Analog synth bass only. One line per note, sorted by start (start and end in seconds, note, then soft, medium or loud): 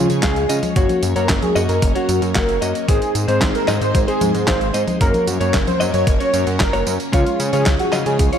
0.10 0.22 C#3 medium
0.23 0.47 C#2 loud
0.50 0.61 C#3 medium
0.76 0.88 F#1 loud
1.03 1.14 F#2 medium
1.16 1.28 F#2 medium
1.29 1.41 F#1 medium
1.56 1.68 F#2 medium
1.69 1.81 F#2 medium
1.82 1.94 F#1 loud
2.09 2.21 F#2 medium
2.22 2.34 F#2 medium
2.35 2.59 F#1 medium
2.62 2.74 F#2 medium
2.89 3.00 G#1 loud
3.15 3.27 G#2 medium
3.28 3.40 G#2 medium
3.42 3.53 G#1 medium
3.68 3.80 G#2 medium
3.81 3.93 G#2 medium
3.95 4.06 G#1 loud
4.21 4.33 G#2 medium
4.35 4.46 G#2 medium
4.48 4.71 G#1 loud
4.74 4.86 G#2 medium
5.01 5.13 F#1 loud
5.27 5.39 F#2 medium
5.41 5.52 F#2 medium
5.54 5.66 F#1 medium
5.81 5.92 F#2 medium
5.94 6.06 F#2 medium
6.07 6.19 F#1 loud
6.34 6.45 F#2 medium
6.47 6.59 F#2 medium
6.60 6.84 F#1 medium
6.87 6.99 F#2 medium
7.13 7.25 C#2 loud
7.40 7.52 C#3 medium
7.53 7.65 C#3 medium
7.66 7.78 C#2 medium
7.93 8.05 C#3 medium
8.06 8.18 C#3 medium
8.19 8.31 C#2 loud